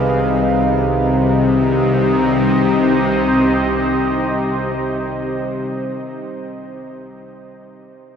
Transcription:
0.00 0.44 C2 medium
0.00 0.44 C3 medium
0.00 0.43 D#4 medium
0.00 0.44 G#4 medium
0.00 0.44 B4 medium
0.00 0.44 D#5 medium
0.00 0.47 F5 medium
0.44 5.17 C2 medium
0.44 5.17 C3 medium
0.44 5.16 D#4 medium
0.62 5.34 G4 medium
0.79 5.51 C5 medium
0.96 5.68 D#5 medium

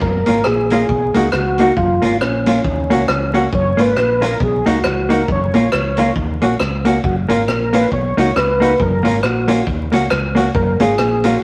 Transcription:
0.02 0.23 F#1 loud
0.02 0.47 A#4 loud
0.02 kick loud
0.26 0.43 G#1 medium
0.26 0.39 A#3 medium
0.26 0.39 C#4 medium
0.26 0.39 F4 medium
0.26 closed hi-hat medium
0.44 0.83 A#1 medium
0.44 1.29 G#4 loud
0.44 cross-stick loud
0.70 0.83 A#3 medium
0.70 0.83 C#4 medium
0.70 0.84 F4 loud
0.70 closed hi-hat medium
0.89 1.11 B1 loud
0.89 kick loud
1.14 1.31 C#2 medium
1.14 1.26 A#3 medium
1.14 1.27 D#4 medium
1.14 1.27 F#4 medium
1.14 closed hi-hat medium
1.32 1.70 C#2 medium
1.32 1.79 F#4 medium
1.32 cross-stick loud
1.58 1.71 A#3 medium
1.58 1.71 D#4 medium
1.58 1.71 F#4 loud
1.58 closed hi-hat medium
1.77 1.99 F#1 loud
1.77 2.18 F4 medium
1.77 kick loud
2.02 2.18 G#1 medium
2.02 2.14 A#3 medium
2.02 2.14 C#4 medium
2.02 2.15 F4 medium
2.02 closed hi-hat medium
2.21 2.59 A#1 medium
2.21 3.31 C#4 medium
2.21 cross-stick loud
2.46 2.58 A#3 medium
2.46 2.59 C#4 medium
2.46 2.59 F4 medium
2.46 closed hi-hat loud
2.64 2.86 D#2 loud
2.64 kick loud
2.90 3.06 C#2 medium
2.90 3.02 A#3 medium
2.90 3.02 C#4 medium
2.90 3.03 F#4 medium
2.90 closed hi-hat medium
3.08 3.46 C#2 medium
3.08 cross-stick loud
3.34 3.46 A#3 medium
3.34 3.46 C#4 medium
3.34 3.46 F#4 medium
3.34 closed hi-hat medium
3.53 3.74 F#1 loud
3.53 3.80 C#5 loud
3.53 kick loud
3.77 3.94 G#1 medium
3.77 3.89 A#3 medium
3.77 3.90 C#4 medium
3.77 3.90 F4 medium
3.77 4.24 B4 medium
3.77 closed hi-hat medium
3.97 4.34 A#1 medium
3.97 cross-stick medium
4.21 4.33 A#3 medium
4.21 4.34 C#4 medium
4.21 4.34 F4 medium
4.21 4.42 A#4 loud
4.21 closed hi-hat medium
4.40 4.62 B1 loud
4.40 4.65 G#4 medium
4.40 kick loud
4.66 4.82 C#2 medium
4.66 4.78 A#3 medium
4.66 4.78 D#4 medium
4.66 4.78 F#4 medium
4.66 5.12 F#4 medium
4.66 closed hi-hat medium
4.84 5.22 C#2 medium
4.84 cross-stick loud
5.09 5.21 A#3 medium
5.09 5.22 D#4 medium
5.09 5.22 F#4 medium
5.09 closed hi-hat medium
5.13 5.30 A#4 medium
5.28 5.50 F#1 loud
5.28 6.14 C#5 medium
5.28 kick loud
5.54 5.70 A#1 loud
5.54 5.66 A#3 medium
5.54 5.66 C#4 medium
5.54 5.66 F4 medium
5.54 closed hi-hat medium
5.72 6.10 C#2 medium
5.72 cross-stick loud
5.97 6.09 A#3 medium
5.97 6.10 C#4 medium
5.97 6.10 F4 loud
5.97 closed hi-hat loud
6.16 6.38 D#2 loud
6.16 kick loud
6.41 6.57 A#1 medium
6.41 6.53 A#3 medium
6.41 6.54 C#4 medium
6.41 6.54 F#4 medium
6.41 closed hi-hat medium
6.59 6.97 C#2 medium
6.59 cross-stick loud
6.85 6.97 A#3 medium
6.85 6.97 C#4 medium
6.85 6.97 F#4 medium
6.85 closed hi-hat medium
7.04 7.26 F#1 loud
7.04 7.16 F#4 medium
7.04 kick loud
7.29 7.45 G#1 medium
7.29 7.41 A#3 medium
7.29 7.41 C#4 medium
7.29 7.41 F4 medium
7.29 7.75 A#4 medium
7.29 closed hi-hat medium
7.47 7.85 A#1 medium
7.47 cross-stick loud
7.73 7.85 A#3 medium
7.73 7.85 C#4 medium
7.73 7.86 F4 medium
7.73 7.91 B4 loud
7.73 closed hi-hat medium
7.92 8.13 B1 loud
7.92 8.37 C#5 medium
7.92 kick loud
8.17 8.33 C#2 medium
8.17 8.29 A#3 medium
8.17 8.29 D#4 medium
8.17 8.30 F#4 medium
8.17 closed hi-hat medium
8.36 8.73 C#2 medium
8.36 8.81 B4 loud
8.36 cross-stick loud
8.60 8.72 A#3 medium
8.60 8.73 D#4 loud
8.60 8.73 F#4 medium
8.60 closed hi-hat medium
8.80 9.01 F#1 loud
8.80 9.22 A#4 medium
8.80 kick loud
9.03 9.20 G#1 medium
9.03 9.16 A#3 medium
9.03 9.16 C#4 medium
9.03 9.16 F4 medium
9.03 closed hi-hat medium
9.23 9.60 A#1 medium
9.23 9.65 F#4 medium
9.23 cross-stick medium
9.48 9.60 A#3 medium
9.48 9.60 C#4 loud
9.48 9.60 F4 loud
9.48 closed hi-hat medium
9.67 9.89 D#2 loud
9.67 kick loud
9.92 10.08 C#2 medium
9.92 10.04 A#3 medium
9.92 10.04 C#4 medium
9.92 10.05 F#4 medium
9.92 closed hi-hat medium
10.10 10.48 C#2 medium
10.10 cross-stick loud
10.35 10.47 A#3 medium
10.35 10.48 C#4 medium
10.35 10.48 F#4 medium
10.35 closed hi-hat medium
10.55 10.76 F#1 loud
10.55 10.81 A#4 loud
10.55 kick loud
10.80 10.95 G#1 medium
10.80 10.92 A#3 medium
10.80 10.92 C#4 medium
10.80 10.92 F4 loud
10.80 11.25 G#4 medium
10.80 closed hi-hat medium
10.98 11.36 A#1 medium
10.98 cross-stick loud
11.24 11.36 A#3 medium
11.24 11.36 C#4 medium
11.24 11.36 F4 medium
11.24 11.42 F#4 loud
11.24 closed hi-hat loud

